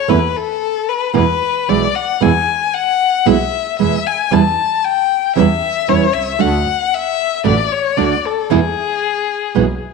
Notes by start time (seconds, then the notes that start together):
Already playing: C#5
0.08 E2 E3 A3 B3 E4 B4
0.36 A4
0.88 B4
1.13 E2 B2 E3 G#3 B3 E4 B4
1.68 B1 B2 E3 G#3 B3 E4 D5
1.95 F#5
2.21 E2 B2 E3 G#3 B3 E4 G#5
2.74 F#5
3.26 B1 B2 E3 G#3 B3 E4 E5
3.79 E2 B2 E3 G#3 B3 E4 E5
4.07 G#5
4.31 E2 E3 G3 C#4 E4 A5
4.84 G5
5.36 E2 E3 G3 C#4 E4 E5
5.88 E2 E3 G3 C#4 E4 C#5
6.13 C2 E5
6.39 D2 D3 A3 D4 F#4 F#5
6.94 E5
7.44 A1 D3 A3 D4 F#4 D5
7.72 C#5
7.97 D2 D3 A3 D4 F#4 D5
8.25 A4
8.50 E2 B2 E3 G#3 B3 E4 G#4
9.55 B1 B2 E3 G#3 B3 E4